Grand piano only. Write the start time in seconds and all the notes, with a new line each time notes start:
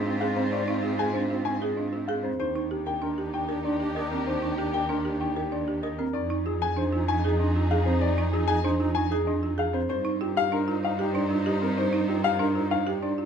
Already playing: D#5
0.20 F5
0.36 C5
0.52 D5
0.83 G#4
0.99 G#5
1.13 C5
1.45 G#5
1.61 G#4
1.77 D#5
2.08 F5
2.23 C5
2.40 C5
2.72 G4
2.87 G5
3.03 A#4
3.34 G5
3.48 G4
3.64 D5
3.95 D#5
4.11 A#4
4.27 C5
4.58 G4
4.74 G5
4.90 A#4
5.20 G5
5.36 G4
5.52 D5
5.83 D#5
5.98 A#4
6.13 D5
6.45 G#4
6.62 G#5
6.78 C5
7.08 G#5
7.24 G#4
7.39 D#5
7.71 F5
7.86 C5
8.01 D5
8.32 G#4
8.48 G#5
8.64 C5
8.95 G#5
9.11 G#4
9.27 D#5
9.59 F5
9.74 C5
9.90 C5
10.21 G4
10.37 F5
10.53 A#4
10.85 F5
11.00 G4
11.15 D5
11.47 D#5
11.62 A#4
11.78 C5
12.08 G4
12.24 F5
12.40 A#4
12.71 F5
12.87 G4
13.03 D5